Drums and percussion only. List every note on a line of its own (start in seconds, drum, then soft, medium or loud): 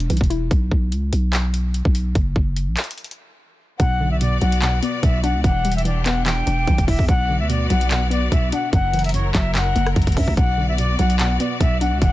0.00 closed hi-hat medium
0.10 closed hi-hat medium
0.17 closed hi-hat medium
0.21 kick loud
0.21 closed hi-hat medium
0.30 closed hi-hat medium
0.51 kick loud
0.51 closed hi-hat medium
0.71 kick loud
0.92 closed hi-hat medium
1.13 closed hi-hat medium
1.33 clap loud
1.33 closed hi-hat medium
1.54 closed hi-hat medium
1.74 closed hi-hat medium
1.85 kick loud
1.95 closed hi-hat medium
2.15 kick loud
2.15 closed hi-hat medium
2.36 kick loud
2.56 closed hi-hat medium
2.77 clap loud
2.77 closed hi-hat medium
2.77 open hi-hat medium
2.84 closed hi-hat medium
2.91 closed hi-hat medium
2.98 closed hi-hat medium
3.04 closed hi-hat medium
3.11 closed hi-hat medium
3.80 kick loud
3.80 closed hi-hat medium
4.21 closed hi-hat medium
4.41 closed hi-hat medium
4.52 closed hi-hat medium
4.62 clap loud
4.62 closed hi-hat medium
4.83 closed hi-hat medium
5.03 kick loud
5.03 closed hi-hat medium
5.24 closed hi-hat medium
5.44 kick loud
5.44 closed hi-hat medium
5.65 closed hi-hat medium
5.72 closed hi-hat medium
5.78 closed hi-hat medium
5.85 closed hi-hat medium
6.06 clap loud
6.06 closed hi-hat medium
6.26 clap loud
6.26 closed hi-hat medium
6.47 closed hi-hat medium
6.67 kick loud
6.67 closed hi-hat soft
6.78 kick loud
6.78 closed hi-hat medium
6.88 kick medium
6.88 open hi-hat medium
6.99 kick medium
7.09 kick loud
7.09 closed hi-hat medium
7.50 closed hi-hat medium
7.70 closed hi-hat medium
7.81 closed hi-hat medium
7.91 clap loud
7.91 closed hi-hat medium
8.11 closed hi-hat medium
8.32 kick loud
8.32 closed hi-hat medium
8.52 closed hi-hat medium
8.73 kick loud
8.73 closed hi-hat medium
8.93 closed hi-hat medium
8.99 closed hi-hat medium
9.04 closed hi-hat medium
9.09 closed hi-hat medium
9.14 closed hi-hat medium
9.35 kick loud
9.35 clap loud
9.35 closed hi-hat medium
9.55 clap loud
9.55 closed hi-hat medium
9.76 closed hi-hat medium
9.87 cross-stick loud
9.87 closed hi-hat medium
9.96 kick loud
9.96 closed hi-hat soft
10.02 closed hi-hat medium
10.07 kick loud
10.07 closed hi-hat medium
10.12 closed hi-hat medium
10.17 kick medium
10.17 open hi-hat medium
10.28 kick medium
10.37 kick loud
10.37 closed hi-hat medium
10.78 closed hi-hat medium
10.99 closed hi-hat medium
11.10 closed hi-hat medium
11.19 clap loud
11.19 closed hi-hat medium
11.40 closed hi-hat medium
11.61 kick loud
11.61 closed hi-hat medium
11.81 closed hi-hat medium
12.02 kick loud
12.02 closed hi-hat medium